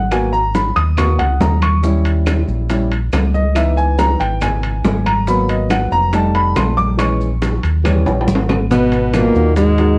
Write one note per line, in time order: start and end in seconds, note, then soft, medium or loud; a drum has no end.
0.00 0.70 G#1 medium
0.00 0.11 F#5 medium
0.11 0.31 A#3 medium
0.11 0.31 B3 soft
0.11 0.40 F#4 medium
0.11 0.33 G#5 medium
0.11 high bongo medium
0.11 high conga soft
0.11 high timbale medium
0.11 claves medium
0.11 maracas medium
0.33 0.54 A#5 loud
0.33 high bongo soft
0.33 high conga soft
0.33 maracas soft
0.55 0.76 B5 medium
0.55 high bongo medium
0.55 high conga loud
0.55 high timbale medium
0.55 low timbale medium
0.55 maracas medium
0.76 1.16 D#2 medium
0.76 0.97 D#6 loud
0.76 high bongo soft
0.76 high timbale medium
0.76 maracas soft
0.97 1.17 A#3 soft
0.97 1.17 B3 soft
0.97 1.17 F#4 medium
0.97 1.19 C#6 medium
0.97 high bongo medium
0.97 high conga soft
0.97 low conga medium
0.97 high timbale medium
0.97 claves medium
0.97 maracas medium
1.19 1.39 C#2 medium
1.19 1.40 F#5 medium
1.19 high bongo soft
1.19 high conga soft
1.19 low conga medium
1.19 high timbale medium
1.19 maracas soft
1.40 2.42 D#2 medium
1.40 1.62 A#5 medium
1.40 high bongo medium
1.40 low bongo medium
1.40 high conga medium
1.40 low timbale medium
1.40 maracas medium
1.62 2.02 C#6 medium
1.62 high conga medium
1.62 high timbale medium
1.62 claves medium
1.62 maracas soft
1.83 2.68 G3 medium
1.83 2.68 C#4 medium
1.83 2.68 E4 medium
1.83 high bongo medium
1.83 maracas medium
2.05 high bongo soft
2.05 high conga soft
2.05 high timbale medium
2.05 maracas soft
2.26 high bongo medium
2.26 high conga loud
2.26 high timbale loud
2.26 low timbale medium
2.26 claves medium
2.26 maracas medium
2.48 3.09 A#1 medium
2.48 high conga soft
2.48 maracas soft
2.69 2.89 G3 medium
2.69 2.89 C#4 soft
2.69 2.89 E4 medium
2.69 high bongo medium
2.69 high conga soft
2.69 high timbale medium
2.69 maracas medium
2.91 high bongo soft
2.91 high conga soft
2.91 high timbale medium
2.91 maracas soft
3.12 4.14 C#2 medium
3.12 high bongo medium
3.12 low bongo medium
3.12 high conga medium
3.12 high timbale medium
3.12 low timbale medium
3.12 claves medium
3.12 maracas medium
3.34 3.55 D#5 medium
3.34 high bongo soft
3.34 high conga medium
3.34 maracas soft
3.55 5.23 E3 medium
3.55 5.23 B3 medium
3.55 5.24 D#4 medium
3.55 3.77 E5 medium
3.55 high bongo medium
3.55 high conga soft
3.55 high timbale medium
3.55 claves medium
3.55 maracas medium
3.77 3.98 G#5 loud
3.77 high bongo soft
3.77 high conga soft
3.77 maracas soft
3.98 4.19 A#5 loud
3.98 high bongo medium
3.98 high conga loud
3.98 high timbale medium
3.98 low timbale medium
3.98 maracas medium
4.20 4.81 G#1 loud
4.20 4.41 G5 medium
4.20 high bongo soft
4.20 high timbale medium
4.20 maracas soft
4.41 5.02 G#5 medium
4.41 high bongo medium
4.41 high conga soft
4.41 low conga medium
4.41 high timbale loud
4.41 claves medium
4.41 maracas medium
4.63 high bongo soft
4.63 high conga soft
4.63 high timbale medium
4.63 maracas soft
4.84 5.86 G#1 loud
4.84 high bongo medium
4.84 low bongo medium
4.84 high conga medium
4.84 low timbale medium
4.84 maracas medium
5.06 5.27 A#5 medium
5.06 high conga medium
5.06 high timbale medium
5.06 claves medium
5.06 maracas soft
5.27 6.09 F#3 medium
5.27 6.10 A#3 medium
5.27 6.10 B3 medium
5.27 5.49 B5 loud
5.27 high bongo medium
5.27 maracas medium
5.49 5.70 D#5 medium
5.49 high bongo soft
5.49 high timbale medium
5.49 maracas soft
5.70 5.92 F#5 medium
5.70 high bongo medium
5.70 high conga medium
5.70 high timbale medium
5.70 low timbale medium
5.70 claves medium
5.70 maracas medium
5.92 6.52 F1 medium
5.92 6.13 A#5 loud
5.92 high conga soft
5.92 maracas soft
6.13 6.95 G3 medium
6.13 6.95 A3 medium
6.13 6.96 D#4 medium
6.13 6.34 A5 medium
6.13 high bongo medium
6.13 high timbale medium
6.13 maracas medium
6.35 6.56 B5 loud
6.35 high bongo soft
6.35 high conga soft
6.35 high timbale medium
6.35 maracas soft
6.56 7.58 A#1 loud
6.56 6.77 C6 medium
6.56 high bongo medium
6.56 low bongo medium
6.56 high conga medium
6.56 high timbale loud
6.56 low timbale medium
6.56 claves medium
6.56 maracas medium
6.77 6.98 D6 loud
6.77 high bongo soft
6.77 high conga medium
6.77 maracas soft
6.98 7.27 E3 medium
6.98 7.27 G#3 medium
6.98 7.28 C#4 medium
6.98 7.60 C#6 medium
6.98 high bongo medium
6.98 high timbale medium
6.98 claves medium
6.98 maracas medium
7.21 high bongo soft
7.21 high conga soft
7.21 maracas soft
7.42 high bongo medium
7.42 high conga loud
7.42 high timbale medium
7.42 low timbale medium
7.42 maracas medium
7.63 8.04 D#2 medium
7.63 high bongo soft
7.63 high timbale medium
7.63 maracas soft
7.84 8.46 E3 medium
7.84 8.46 G3 medium
7.84 8.46 C#4 medium
7.84 high bongo medium
7.84 high conga soft
7.84 low conga medium
7.84 high timbale loud
7.84 claves medium
7.84 maracas medium
8.06 8.27 A#1 medium
8.06 high bongo medium
8.06 high conga soft
8.06 high timbale medium
8.06 maracas soft
8.21 high timbale medium
8.27 9.29 G#1 loud
8.27 low bongo loud
8.27 high conga medium
8.27 maracas medium
8.35 low timbale medium
8.49 low bongo medium
8.49 high conga medium
8.49 low timbale loud
8.49 claves medium
8.49 maracas soft
8.71 9.06 B2 medium
8.71 9.15 B2 medium
8.71 9.06 B3 medium
8.71 9.15 B3 loud
8.71 9.06 B4 medium
8.71 high bongo medium
8.71 high conga soft
8.71 maracas medium
8.92 high bongo soft
8.92 high conga soft
8.92 high timbale medium
8.92 maracas soft
9.13 9.56 A#2 medium
9.13 9.32 B2 medium
9.13 9.56 A#3 loud
9.13 9.32 B3 medium
9.13 9.32 B4 medium
9.13 high bongo medium
9.13 high conga loud
9.13 high timbale medium
9.13 low timbale medium
9.13 claves medium
9.13 maracas medium
9.35 9.96 D#2 medium
9.35 9.71 D#3 medium
9.35 9.71 D#4 medium
9.35 9.71 F#4 medium
9.35 high conga soft
9.35 maracas soft
9.56 9.99 G#2 medium
9.56 9.99 G#3 loud
9.56 high bongo medium
9.56 high conga soft
9.56 high timbale medium
9.56 maracas medium
9.78 9.99 D#3 medium
9.78 9.99 D#4 medium
9.78 9.99 F#4 medium
9.78 high bongo soft
9.78 high timbale medium
9.78 maracas soft